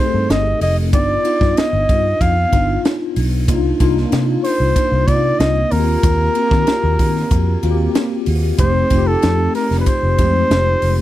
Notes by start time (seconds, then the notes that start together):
Already playing: A3 F#4 G4 C5
0.00 C4 D#4 G#4
0.05 A4
0.14 G2
0.29 G1 D#5, snare, ride
0.61 F1 D#5, open hi-hat, ride
0.93 G1 B3 D4 D#4 F4 D5, kick, hi-hat pedal, ride
1.25 B3 D#4 F4, ride
1.41 G2, kick, snare
1.57 D#5, snare, ride
1.73 G1
1.89 G2, kick, ride
2.21 F2 F5, kick, ride
2.52 G1 B3 D4 D#4 F4, kick, ride
2.85 snare, ride
3.16 B1, open hi-hat, ride
3.48 C2 A#3 D4 D#4 F4, kick, hi-hat pedal, ride
3.80 C2 A#3 D4 D#4 F4, kick, ride
3.98 snare
4.12 C3, snare, ride
4.44 C5, snare, open hi-hat, ride
4.60 C2
4.76 kick, hi-hat pedal, ride
4.92 C2
5.07 C3 A#3 C4 D#4 F4 D5, kick, ride
5.39 C2 D#5, snare, ride
5.71 D#2 A#3 C4 F4 F#4 A#4, open hi-hat, ride
5.79 G4
6.03 D#2, kick, hi-hat pedal, ride
6.35 A#3 C4 F4 F#4, ride
6.43 G4
6.51 D#3, kick, snare
6.67 snare, ride
6.84 D#2
6.99 D#3, kick, open hi-hat, ride
7.16 snare
7.31 F2, kick, hi-hat pedal, ride
7.63 D#2 A#3 C4 F4 F#4, ride
7.71 G4
7.95 snare, ride
8.26 D#2, open hi-hat, ride
8.58 F1 A3 C4 D#4 G4 C5, kick, hi-hat pedal, ride
8.90 F1 A3 C4 D#4 F4, kick, ride
8.98 G4
9.07 A4
9.22 F2, snare, ride
9.55 A#4, snare, open hi-hat, ride
9.71 F1, snare
9.80 B4
9.86 C5, kick, hi-hat pedal, ride
10.03 F1
10.18 F2 G#3 C4 D#4 G4, kick, ride
10.25 A3
10.50 F1, snare, ride
10.82 F1, open hi-hat, ride